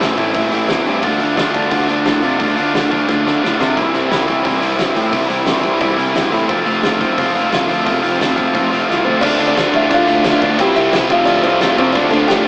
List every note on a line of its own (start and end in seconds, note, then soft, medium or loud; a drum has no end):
0.00 0.16 A1 medium
0.00 0.19 A2 medium
0.00 0.19 E3 medium
0.00 0.19 A3 loud
0.00 0.18 C4 loud
0.00 0.17 E4 loud
0.00 snare loud
0.00 open hi-hat medium
0.17 0.34 A1 medium
0.17 0.33 A2 medium
0.17 0.34 E3 medium
0.17 0.35 A3 medium
0.17 0.35 C4 medium
0.17 0.34 E4 medium
0.17 kick medium
0.17 open hi-hat medium
0.34 0.50 A1 medium
0.34 0.52 A2 medium
0.34 0.51 E3 loud
0.34 0.52 A3 medium
0.34 0.51 C4 loud
0.34 0.51 E4 loud
0.34 kick loud
0.34 open hi-hat medium
0.52 0.68 A1 medium
0.52 0.67 A2 medium
0.52 0.68 E3 medium
0.52 0.69 A3 medium
0.52 0.69 C4 medium
0.52 0.68 E4 medium
0.52 open hi-hat medium
0.68 0.85 E2 medium
0.68 0.86 A2 medium
0.68 0.85 E3 medium
0.68 0.86 A3 medium
0.68 0.84 C4 medium
0.68 0.84 E4 loud
0.68 snare loud
0.68 open hi-hat medium
0.85 1.02 G2 medium
0.85 1.03 A2 medium
0.85 1.02 E3 medium
0.85 1.03 A3 medium
0.85 1.02 C4 medium
0.85 1.02 E4 medium
0.85 open hi-hat soft
1.02 1.19 D2 medium
1.02 1.20 D3 medium
1.02 1.19 A3 loud
1.02 1.19 D4 loud
1.02 1.19 F4 loud
1.02 kick loud
1.02 open hi-hat medium
1.19 1.38 D2 medium
1.19 1.35 D3 medium
1.19 1.36 A3 medium
1.19 1.36 D4 medium
1.19 1.37 F4 medium
1.19 open hi-hat medium
1.36 1.54 D2 medium
1.36 1.54 D3 loud
1.36 1.54 A3 loud
1.36 1.54 D4 loud
1.36 1.53 F4 loud
1.36 snare loud
1.36 open hi-hat medium
1.53 1.70 D2 medium
1.53 1.69 D3 medium
1.53 1.69 A3 medium
1.53 1.70 D4 medium
1.53 1.70 F4 medium
1.53 kick medium
1.53 open hi-hat medium
1.70 1.87 D2 medium
1.70 1.88 D3 medium
1.70 1.87 A3 medium
1.70 1.87 D4 medium
1.70 1.86 F4 loud
1.70 kick loud
1.70 open hi-hat medium
1.87 2.05 D2 medium
1.87 2.04 D3 medium
1.87 2.04 A3 medium
1.87 2.05 D4 medium
1.87 2.05 F4 medium
1.87 open hi-hat medium
2.05 2.22 A2 medium
2.05 2.22 D3 medium
2.05 2.22 A3 loud
2.05 2.22 D4 medium
2.05 2.21 F4 loud
2.05 snare loud
2.05 open hi-hat medium
2.22 2.39 C3 medium
2.22 2.37 D3 medium
2.22 2.38 A3 medium
2.22 2.38 D4 medium
2.22 2.39 F4 medium
2.22 open hi-hat medium
2.39 2.56 D2 medium
2.39 2.56 D3 medium
2.39 2.55 A3 medium
2.39 2.55 D4 loud
2.39 2.55 F4 loud
2.39 kick loud
2.39 open hi-hat medium
2.56 2.74 D2 medium
2.56 2.72 D3 medium
2.56 2.72 A3 medium
2.56 2.73 D4 medium
2.56 2.73 F4 medium
2.56 open hi-hat medium
2.73 2.91 D2 medium
2.73 2.91 D3 medium
2.73 2.90 A3 loud
2.73 2.90 D4 loud
2.73 2.89 F4 loud
2.73 snare loud
2.73 open hi-hat medium
2.90 3.08 D2 medium
2.90 3.06 D3 medium
2.90 3.07 A3 medium
2.90 3.08 D4 medium
2.90 3.08 F4 medium
2.90 kick medium
2.90 open hi-hat medium
3.07 3.24 D2 medium
3.07 3.25 D3 medium
3.07 3.25 A3 medium
3.07 3.25 D4 medium
3.07 3.24 F4 medium
3.07 kick loud
3.07 snare medium
3.25 3.42 D2 medium
3.25 3.40 D3 medium
3.25 3.41 A3 medium
3.25 3.41 D4 medium
3.25 3.41 F4 medium
3.25 snare medium
3.41 3.59 A2 medium
3.41 3.59 D3 medium
3.41 3.59 A3 medium
3.41 3.58 D4 medium
3.41 3.58 F4 medium
3.41 snare medium
3.59 3.79 C3 medium
3.59 3.76 D3 medium
3.59 3.76 A3 medium
3.59 3.75 D4 medium
3.59 3.75 F4 medium
3.59 snare medium
3.76 3.93 C2 medium
3.76 3.94 C3 medium
3.76 3.94 E3 medium
3.76 3.94 G3 loud
3.76 3.94 C4 medium
3.76 3.93 E4 medium
3.76 kick loud
3.76 open hi-hat medium
3.94 4.10 C2 medium
3.94 4.10 C3 medium
3.94 4.10 E3 medium
3.94 4.10 G3 medium
3.94 4.11 C4 medium
3.94 4.11 E4 medium
3.94 open hi-hat soft
4.10 4.27 C2 medium
4.10 4.27 C3 loud
4.10 4.27 E3 loud
4.10 4.27 G3 loud
4.10 4.26 C4 loud
4.10 4.26 E4 loud
4.10 snare loud
4.10 open hi-hat medium
4.26 4.43 C2 medium
4.26 4.41 C3 medium
4.26 4.42 E3 medium
4.26 4.43 G3 medium
4.26 4.44 C4 medium
4.26 4.43 E4 medium
4.26 kick medium
4.26 open hi-hat medium
4.43 4.60 C2 medium
4.43 4.60 C3 medium
4.43 4.60 E3 loud
4.43 4.59 G3 medium
4.43 4.59 C4 medium
4.43 4.58 E4 medium
4.43 kick loud
4.43 open hi-hat medium
4.60 4.77 C2 medium
4.60 4.75 C3 medium
4.60 4.75 E3 medium
4.60 4.76 G3 medium
4.60 4.77 C4 medium
4.60 4.76 E4 medium
4.60 open hi-hat medium
4.76 4.95 G2 medium
4.76 4.94 C3 medium
4.76 4.94 E3 medium
4.76 4.94 G3 loud
4.76 4.94 C4 medium
4.76 4.93 E4 medium
4.76 snare loud
4.76 open hi-hat medium
4.94 5.12 A2 medium
4.94 5.09 C3 medium
4.94 5.10 E3 medium
4.94 5.10 G3 medium
4.94 5.11 C4 medium
4.94 5.10 E4 medium
4.94 open hi-hat medium
5.10 5.29 C2 medium
5.10 5.28 C3 medium
5.10 5.28 E3 medium
5.10 5.28 G3 loud
5.10 5.29 C4 medium
5.10 5.27 E4 loud
5.10 kick loud
5.10 open hi-hat medium
5.28 5.46 C2 medium
5.28 5.44 C3 medium
5.28 5.44 E3 medium
5.28 5.45 G3 medium
5.28 5.45 C4 medium
5.28 5.45 E4 medium
5.28 open hi-hat medium
5.45 5.62 C2 medium
5.45 5.63 C3 medium
5.45 5.62 E3 loud
5.45 5.62 G3 medium
5.45 5.62 C4 loud
5.45 5.61 E4 loud
5.45 snare loud
5.45 open hi-hat medium
5.62 5.79 C2 medium
5.62 5.78 C3 medium
5.62 5.79 E3 medium
5.62 5.79 G3 medium
5.62 5.80 C4 medium
5.62 5.80 E4 medium
5.62 kick medium
5.62 open hi-hat medium
5.80 5.97 C2 medium
5.80 5.97 C3 medium
5.80 5.97 E3 medium
5.80 5.96 G3 medium
5.80 5.97 C4 loud
5.80 5.96 E4 loud
5.80 kick loud
5.80 open hi-hat medium
5.97 6.15 C2 medium
5.97 6.13 C3 medium
5.97 6.14 E3 medium
5.97 6.14 G3 medium
5.97 6.15 C4 medium
5.97 6.14 E4 medium
5.97 open hi-hat medium
6.14 6.31 G2 medium
6.14 6.32 C3 medium
6.14 6.31 E3 medium
6.14 6.31 G3 medium
6.14 6.32 C4 medium
6.14 6.30 E4 medium
6.14 snare loud
6.14 open hi-hat medium
6.32 6.48 A2 medium
6.32 6.49 C3 medium
6.32 6.48 E3 medium
6.32 6.48 G3 medium
6.32 6.49 C4 medium
6.32 6.48 E4 medium
6.32 open hi-hat medium
6.48 6.65 F1 medium
6.48 6.67 F3 medium
6.48 6.66 A3 loud
6.48 6.66 C4 loud
6.48 6.66 F4 loud
6.48 kick loud
6.48 open hi-hat medium
6.66 6.82 F1 medium
6.66 6.82 F3 medium
6.66 6.83 A3 medium
6.66 6.83 C4 medium
6.66 6.83 F4 medium
6.66 open hi-hat soft
6.82 6.99 F1 medium
6.82 7.01 F3 loud
6.82 7.01 A3 loud
6.82 7.00 C4 loud
6.82 7.00 F4 loud
6.82 snare loud
6.82 open hi-hat medium
7.00 7.17 F1 medium
7.00 7.18 F3 medium
7.00 7.18 A3 medium
7.00 7.18 C4 medium
7.00 7.19 F4 medium
7.00 kick medium
7.00 open hi-hat medium
7.18 7.34 F1 medium
7.18 7.35 F3 medium
7.18 7.35 A3 medium
7.18 7.34 C4 medium
7.18 7.34 F4 loud
7.18 kick loud
7.18 open hi-hat medium
7.34 7.51 F1 medium
7.34 7.50 F3 medium
7.34 7.50 A3 medium
7.34 7.50 C4 medium
7.34 7.51 F4 medium
7.34 open hi-hat medium
7.51 7.68 C2 medium
7.51 7.69 F3 medium
7.51 7.69 A3 medium
7.51 7.68 C4 loud
7.51 7.68 F4 loud
7.51 snare loud
7.51 open hi-hat medium
7.68 7.85 D2 medium
7.68 7.83 F3 medium
7.68 7.84 A3 medium
7.68 7.84 C4 medium
7.68 7.85 F4 medium
7.68 open hi-hat medium
7.85 8.02 F1 loud
7.85 8.02 F3 medium
7.85 8.03 A3 loud
7.85 8.01 C4 medium
7.85 8.01 F4 loud
7.85 kick loud
7.85 open hi-hat medium
8.02 8.19 F1 medium
8.02 8.18 F3 medium
8.02 8.18 A3 medium
8.02 8.19 C4 medium
8.02 8.20 F4 medium
8.02 open hi-hat medium
8.19 8.36 F1 medium
8.19 8.36 F3 loud
8.19 8.36 A3 medium
8.19 8.36 C4 loud
8.19 8.35 F4 loud
8.19 snare loud
8.19 open hi-hat medium
8.36 8.54 F1 medium
8.36 8.53 F3 medium
8.36 8.53 A3 medium
8.36 8.53 C4 medium
8.36 8.53 F4 loud
8.36 kick medium
8.36 open hi-hat medium
8.54 8.71 F1 medium
8.54 8.70 F3 medium
8.54 8.70 A3 medium
8.54 8.70 C4 medium
8.54 8.69 F4 medium
8.54 kick loud
8.54 open hi-hat medium
8.70 8.88 F1 medium
8.70 8.87 F3 medium
8.70 8.87 A3 medium
8.70 8.88 C4 medium
8.70 8.88 F4 medium
8.70 open hi-hat medium
8.88 9.05 C2 medium
8.88 9.05 F3 medium
8.88 9.05 A3 loud
8.88 9.05 C4 medium
8.88 9.04 F4 loud
8.88 snare medium
9.05 9.22 D2 medium
9.05 9.21 F3 medium
9.05 9.21 A3 medium
9.05 9.22 C4 medium
9.05 9.21 F4 medium
9.05 9.23 C5 medium
9.05 floor tom medium
9.21 9.39 D2 loud
9.21 9.38 D3 medium
9.21 9.38 A3 medium
9.21 9.37 D4 loud
9.21 9.46 D4 medium
9.21 9.37 F4 loud
9.21 9.47 D5 loud
9.21 kick loud
9.21 crash loud
9.21 crash medium
9.38 9.55 D2 medium
9.38 9.54 D3 medium
9.38 9.55 A3 medium
9.38 9.56 D4 medium
9.38 9.56 F4 medium
9.38 crash medium
9.48 9.72 D4 medium
9.48 9.74 D5 loud
9.56 9.88 D2 medium
9.56 9.73 D3 medium
9.56 9.73 A3 loud
9.56 9.72 D4 loud
9.56 9.72 F4 loud
9.56 snare loud
9.56 crash medium
9.73 9.88 D3 medium
9.73 9.89 A3 medium
9.73 9.89 D4 medium
9.73 9.92 E4 medium
9.73 9.90 F4 loud
9.73 9.92 E5 medium
9.73 kick medium
9.73 crash medium
9.90 10.07 D3 medium
9.90 10.07 D3 loud
9.90 10.07 A3 loud
9.90 10.07 D4 loud
9.90 10.06 F4 loud
9.90 kick loud
9.90 crash medium
9.94 10.57 F4 medium
9.94 10.57 F5 loud
10.07 10.24 D2 medium
10.07 10.23 D3 medium
10.07 10.23 A3 medium
10.07 10.23 D4 medium
10.07 10.24 F4 medium
10.07 crash medium
10.24 10.40 D2 medium
10.24 10.41 D3 medium
10.24 10.41 A3 medium
10.24 10.41 D4 loud
10.24 10.40 F4 loud
10.24 snare loud
10.24 crash medium
10.41 10.58 D2 loud
10.41 10.58 D3 medium
10.41 10.58 A3 medium
10.41 10.58 D4 medium
10.41 10.58 F4 loud
10.41 kick medium
10.41 crash medium
10.58 10.74 C2 medium
10.58 10.75 C3 medium
10.58 10.74 E3 loud
10.58 10.74 G3 loud
10.58 10.73 C4 loud
10.58 10.73 E4 loud
10.58 10.76 G4 medium
10.58 10.77 G5 loud
10.58 kick loud
10.58 crash medium
10.74 10.92 C2 medium
10.74 10.90 C3 medium
10.74 10.91 E3 medium
10.74 10.91 G3 medium
10.74 10.92 C4 medium
10.74 10.92 E4 medium
10.74 11.09 E4 medium
10.74 11.11 E5 loud
10.74 crash medium
10.91 11.09 C2 loud
10.91 11.08 C3 medium
10.91 11.08 E3 medium
10.91 11.09 G3 loud
10.91 11.08 C4 loud
10.91 11.09 E4 loud
10.91 snare loud
10.91 crash loud
11.09 11.26 F1 medium
11.09 11.76 F2 loud
11.09 11.77 C3 loud
11.09 11.25 F3 loud
11.09 11.25 A3 loud
11.09 11.24 C4 loud
11.09 11.24 F4 loud
11.09 11.29 F5 medium
11.09 kick loud
11.09 crash medium
11.13 11.27 F4 medium
11.25 11.43 D2 loud
11.25 11.42 F3 medium
11.25 11.42 A3 medium
11.25 11.43 C4 loud
11.25 11.42 D4 medium
11.25 11.43 F4 loud
11.25 11.44 D5 loud
11.25 crash medium
11.43 11.60 C2 medium
11.43 11.61 F3 medium
11.43 11.60 A3 medium
11.43 11.61 C4 loud
11.43 11.76 C4 medium
11.43 11.60 F4 medium
11.43 11.78 C5 loud
11.43 crash medium
11.61 11.77 F1 medium
11.61 11.76 F3 medium
11.61 11.76 A3 medium
11.61 11.77 C4 loud
11.61 11.77 F4 loud
11.61 snare loud
11.61 crash medium
11.77 11.96 C2 loud
11.77 11.95 F2 medium
11.77 11.94 C3 medium
11.77 11.94 F3 loud
11.77 11.94 A3 medium
11.77 11.94 C4 loud
11.77 11.95 C4 medium
11.77 11.94 F4 loud
11.77 11.96 C5 medium
11.77 kick medium
11.77 crash medium
11.93 12.11 D2 loud
11.93 12.11 D3 medium
11.93 12.11 A3 loud
11.93 12.10 D4 medium
11.93 12.11 D4 loud
11.93 12.10 F4 loud
11.93 12.12 D5 loud
11.93 kick loud
11.93 crash medium
12.10 12.28 D2 loud
12.10 12.27 D3 medium
12.10 12.27 A3 medium
12.10 12.27 D4 medium
12.10 12.27 F4 medium
12.10 12.27 A4 medium
12.10 12.29 A5 loud
12.10 crash medium
12.28 12.48 D2 medium
12.28 12.45 D3 medium
12.28 12.45 A3 loud
12.28 12.44 D4 loud
12.28 12.44 F4 loud
12.28 12.44 G4 medium
12.28 12.46 G5 loud
12.28 snare loud
12.28 crash medium